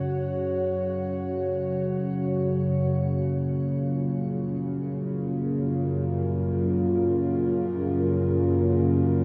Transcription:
0.00 9.24 F#2 medium
0.00 9.24 C#3 medium
0.00 2.91 F#4 medium
0.00 6.69 C#5 medium
0.00 2.92 F#5 medium
2.92 9.24 A#3 medium
3.70 9.24 F4 medium
4.61 9.24 A#4 medium

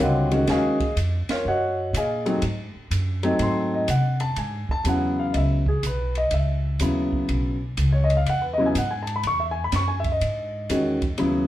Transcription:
0.00 0.47 C#2 medium
0.00 0.29 D3 medium
0.00 0.29 G3 medium
0.00 0.29 C4 medium
0.00 0.29 F4 medium
0.00 0.32 F#4 medium
0.00 0.46 C#5 medium
0.00 0.47 D#5 medium
0.00 0.46 F#5 medium
0.31 0.46 D#3 medium
0.31 0.47 G#3 medium
0.31 0.47 C#4 medium
0.31 0.48 F#4 medium
0.31 ride soft
0.47 0.95 D#2 medium
0.47 0.77 D#3 medium
0.47 0.77 G#3 medium
0.47 0.77 C#4 medium
0.47 0.78 F#4 medium
0.47 0.95 G#4 medium
0.47 0.95 D#5 medium
0.47 0.95 F5 medium
0.47 0.94 G#5 loud
0.47 snare soft
0.47 ride medium
0.80 kick medium
0.80 ride soft
0.96 1.27 F2 medium
0.96 hi-hat pedal soft
0.96 ride medium
1.29 1.45 F4 medium
1.29 1.46 A#4 medium
1.29 1.46 C#5 medium
1.29 1.45 F5 medium
1.29 muted upright bass stroke soft
1.29 snare soft
1.29 ride medium
1.45 1.92 F#2 medium
1.45 1.92 F#4 medium
1.45 1.92 C#5 medium
1.45 1.92 D#5 medium
1.45 1.92 F#5 medium
1.93 2.41 A#2 medium
1.93 2.41 G#5 medium
1.93 hi-hat pedal medium
1.93 ride medium
1.98 2.41 G#4 medium
1.98 2.41 D#5 medium
1.98 2.41 F5 medium
2.26 2.41 F#3 medium
2.26 2.41 A3 medium
2.26 2.41 C4 medium
2.26 2.41 D#4 medium
2.26 ride soft
2.42 2.72 G#2 medium
2.42 ride medium
2.75 muted upright bass stroke soft
2.90 3.38 F#2 medium
2.90 hi-hat pedal soft
2.90 ride medium
3.23 3.85 F#3 medium
3.23 3.85 A3 medium
3.23 3.85 C4 medium
3.23 3.86 D#4 medium
3.23 ride soft
3.39 3.87 G#2 medium
3.39 3.73 C6 medium
3.39 ride medium
3.74 3.89 D#5 medium
3.88 4.35 C3 medium
3.88 4.21 F#5 medium
3.88 hi-hat pedal medium
3.88 ride medium
4.20 4.36 A5 loud
4.20 ride soft
4.36 4.67 G#2 medium
4.36 4.69 G#5 medium
4.36 ride medium
4.69 4.86 A5 loud
4.69 muted upright bass stroke soft
4.69 kick soft
4.84 5.32 E2 medium
4.84 5.60 C#3 medium
4.84 5.60 F#3 soft
4.84 5.61 B3 soft
4.84 5.61 E4 medium
4.84 hi-hat pedal medium
4.84 ride medium
4.89 5.19 F#5 medium
5.20 5.34 F5 medium
5.33 5.81 C#2 medium
5.33 5.36 D#5 soft
5.33 ride medium
5.37 5.67 E5 medium
5.66 5.83 G#4 medium
5.66 kick medium
5.83 6.30 B1 medium
5.83 6.16 B4 medium
5.83 hi-hat pedal soft
5.83 ride medium
6.15 6.32 D#5 medium
6.15 ride soft
6.31 6.78 C#2 medium
6.31 7.26 E5 medium
6.31 ride medium
6.79 7.27 D#2 medium
6.79 7.55 C#3 medium
6.79 7.55 F#3 medium
6.79 7.55 B3 soft
6.79 7.56 E4 medium
6.79 hi-hat pedal medium
6.79 ride medium
7.13 kick soft
7.29 7.76 B1 medium
7.29 ride soft
7.77 8.25 C#2 medium
7.77 hi-hat pedal medium
7.77 ride medium
7.92 8.09 C#5 medium
8.04 8.15 D#5 medium
8.10 ride soft
8.17 8.25 F5 medium
8.26 8.73 E2 medium
8.26 8.44 F#5 loud
8.26 ride medium
8.42 8.58 B4 medium
8.54 8.64 D#5 medium
8.58 8.73 C#3 medium
8.58 8.73 F#3 medium
8.58 8.74 B3 medium
8.58 8.74 E4 medium
8.66 8.74 G#5 medium
8.75 9.22 G#2 medium
8.75 8.92 F#5 medium
8.75 hi-hat pedal medium
8.75 ride medium
8.91 9.07 G#5 medium
9.03 9.13 A5 medium
9.07 ride soft
9.16 9.23 B5 medium
9.23 9.71 E2 medium
9.23 9.41 C#6 loud
9.23 ride medium
9.40 9.55 E5 medium
9.51 9.61 G#5 medium
9.64 9.72 B5 medium
9.72 10.20 F#2 medium
9.72 9.90 C#6 medium
9.72 snare soft
9.72 hi-hat pedal medium
9.72 ride medium
9.88 10.04 G#5 medium
10.00 10.10 E5 medium
10.04 kick soft
10.04 ride soft
10.12 10.81 D#5 medium
10.21 10.68 G#2 medium
10.21 ride medium
10.70 11.17 E2 medium
10.70 10.99 D#3 medium
10.70 10.99 G#3 medium
10.70 10.99 C#4 medium
10.70 11.00 F#4 medium
10.70 hi-hat pedal soft
10.70 ride medium
11.02 kick soft
11.02 ride soft
11.18 11.47 D#2 medium
11.18 11.47 C#3 medium
11.18 11.47 F#3 medium
11.18 11.47 B3 medium
11.18 11.47 E4 medium
11.18 ride soft

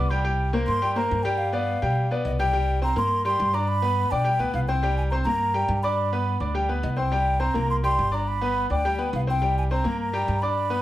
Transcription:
0.00 0.63 C2 loud
0.00 0.11 D6 loud
0.10 0.22 G3 loud
0.10 0.22 G4 medium
0.10 0.23 G5 medium
0.10 0.25 B5 medium
0.24 0.48 G3 medium
0.24 0.48 G4 medium
0.24 0.48 G5 medium
0.53 0.77 A#3 medium
0.53 0.77 A#4 medium
0.53 0.77 C5 medium
0.67 1.08 G2 loud
0.67 0.94 C6 loud
0.82 0.94 G3 medium
0.82 0.94 G4 medium
0.82 0.94 G5 medium
0.96 1.20 A#3 medium
0.96 1.20 A#4 medium
0.96 1.20 C5 medium
0.96 1.24 A#5 loud
1.11 1.77 G2 loud
1.23 1.48 G3 loud
1.23 1.48 G4 loud
1.23 1.39 G5 loud
1.23 1.49 G5 medium
1.38 2.24 F5 medium
1.52 1.76 B3 medium
1.52 1.77 B4 medium
1.52 1.77 D5 medium
1.82 2.22 B2 medium
1.82 2.06 G3 medium
1.82 2.06 G4 medium
1.82 2.06 G5 medium
2.11 2.34 B3 medium
2.11 2.35 B4 medium
2.11 2.35 D5 medium
2.25 2.91 C2 loud
2.25 2.31 D#5 medium
2.39 2.51 G3 medium
2.39 2.51 G4 loud
2.39 2.79 G5 loud
2.39 2.52 G5 loud
2.53 2.77 G3 medium
2.53 2.77 G4 medium
2.53 2.77 G5 medium
2.82 2.94 C4 medium
2.82 2.94 C5 medium
2.82 2.96 A#5 loud
2.82 2.94 C6 medium
2.96 3.36 G2 loud
2.96 3.20 A#3 medium
2.96 3.20 A#4 medium
2.96 3.20 A#5 medium
2.96 3.24 C6 loud
3.25 3.49 G3 medium
3.25 3.49 G4 medium
3.25 3.49 G5 medium
3.25 3.56 C6 loud
3.40 4.06 G2 loud
3.53 3.77 D4 medium
3.53 3.77 D5 medium
3.53 3.69 A#5 loud
3.53 3.78 D6 medium
3.68 4.12 B5 loud
3.82 4.06 B3 medium
3.82 4.06 B4 medium
3.82 4.06 B5 medium
4.11 4.38 B2 medium
4.11 4.23 D4 medium
4.11 4.23 D5 medium
4.11 4.54 G5 loud
4.11 4.24 D6 medium
4.24 4.37 G3 medium
4.24 4.37 G4 medium
4.24 4.37 G5 medium
4.39 4.53 D2 medium
4.39 4.63 B3 medium
4.39 4.63 B4 medium
4.39 4.64 B5 medium
4.53 5.20 C2 loud
4.53 4.60 F5 loud
4.68 4.80 C4 medium
4.68 4.80 C5 medium
4.68 4.95 G5 loud
4.68 4.81 C6 medium
4.83 5.06 G3 loud
4.83 5.07 G4 medium
4.83 5.07 G5 medium
4.97 5.03 G#5 medium
5.10 5.24 C4 medium
5.10 5.24 C5 medium
5.10 5.16 A#5 loud
5.10 5.24 C6 medium
5.24 5.65 G2 medium
5.24 5.50 A#3 medium
5.24 5.50 A#4 medium
5.24 5.78 A#5 loud
5.24 5.50 A#5 medium
5.54 5.78 G3 medium
5.54 5.78 G4 medium
5.54 5.78 G5 medium
5.68 6.35 G2 loud
5.83 6.07 D4 medium
5.83 6.07 D5 medium
5.83 6.52 B5 medium
5.83 6.07 D6 medium
6.12 6.36 B3 medium
6.12 6.36 B4 medium
6.12 6.36 B5 medium
6.40 6.80 D2 medium
6.40 6.52 D4 medium
6.40 6.53 D5 medium
6.40 6.52 D6 medium
6.54 6.66 G3 medium
6.54 6.67 G4 medium
6.54 6.67 G5 medium
6.69 6.93 B3 medium
6.69 6.93 B4 medium
6.69 6.93 B5 medium
6.83 7.50 C2 loud
6.83 6.89 D#5 medium
6.97 7.09 C4 medium
6.97 7.09 C5 medium
6.97 7.41 G5 loud
6.97 7.09 C6 medium
7.12 7.35 G3 medium
7.12 7.36 G4 medium
7.12 7.36 G5 medium
7.40 7.52 C4 medium
7.40 7.52 C5 medium
7.40 7.69 A#5 loud
7.40 7.52 C6 medium
7.54 7.95 C2 loud
7.54 7.78 A#3 medium
7.54 7.78 A#4 medium
7.54 7.78 A#5 medium
7.70 7.76 C6 loud
7.83 8.07 G3 medium
7.83 8.07 G4 medium
7.83 8.08 G5 medium
7.83 8.15 C6 loud
7.99 8.65 G1 loud
8.12 8.36 D4 medium
8.12 8.36 D5 medium
8.12 8.29 A#5 loud
8.12 8.36 D6 medium
8.28 8.70 B5 loud
8.41 8.65 B3 medium
8.41 8.65 B4 medium
8.41 8.65 B5 medium
8.70 9.10 D2 medium
8.70 8.82 D4 medium
8.70 8.82 D5 medium
8.70 9.10 G5 loud
8.70 8.82 D6 medium
8.85 8.97 G3 medium
8.85 8.97 G4 medium
8.85 8.97 G5 medium
8.98 9.22 B3 medium
8.98 9.22 B4 medium
8.98 9.22 B5 medium
9.13 9.79 C2 loud
9.13 9.21 F5 loud
9.27 9.39 C4 medium
9.27 9.39 C5 medium
9.27 9.55 G5 loud
9.27 9.40 C6 medium
9.42 9.65 G3 medium
9.42 9.65 G4 medium
9.42 9.65 G5 medium
9.58 9.64 G#5 loud
9.71 9.82 C4 medium
9.71 9.83 C5 medium
9.71 9.98 A#5 loud
9.71 9.83 C6 medium
9.84 10.25 G2 medium
9.84 10.08 A#3 medium
9.84 10.08 A#4 medium
9.84 10.08 A#5 medium
10.00 10.43 A#5 loud
10.13 10.37 G3 medium
10.13 10.37 G4 medium
10.13 10.37 G5 medium
10.28 10.82 G2 loud
10.42 10.66 D4 medium
10.42 10.66 D5 medium
10.42 10.82 B5 loud
10.42 10.66 D6 medium
10.70 10.82 B3 medium
10.70 10.82 B4 medium
10.70 10.82 B5 medium

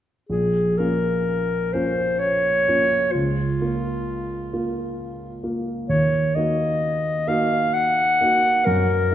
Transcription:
0.29 0.77 A#1 soft
0.29 0.79 G#4 soft
0.77 1.70 A#3 soft
0.77 1.70 C#4 soft
0.77 1.70 F4 soft
0.77 1.74 A#4 soft
1.73 2.63 A#3 soft
1.73 2.63 C#4 soft
1.73 2.63 F4 soft
1.73 2.21 C5 soft
2.19 3.13 C#5 medium
2.68 3.10 A#3 soft
2.68 3.11 C#4 soft
2.68 3.11 F4 soft
3.12 3.60 C#2 soft
3.12 5.42 F4 soft
3.62 4.49 A#3 soft
3.62 4.49 F4 soft
4.53 5.40 A#3 soft
4.53 5.40 F4 soft
5.43 5.86 A#3 soft
5.43 5.86 F4 soft
5.89 6.35 D#2 soft
5.89 6.37 C#5 medium
6.36 7.25 A#3 soft
6.36 7.25 D#4 soft
6.36 7.25 F#4 soft
6.36 7.29 D#5 medium
7.27 8.16 A#3 soft
7.27 8.17 D#4 soft
7.27 8.17 F#4 soft
7.27 7.75 F5 medium
7.74 8.67 F#5 medium
8.21 8.63 A#3 soft
8.21 8.63 D#4 soft
8.21 8.63 F#4 soft
8.65 9.11 F#2 soft
8.65 9.15 A#4 medium
9.11 9.15 A#3 soft

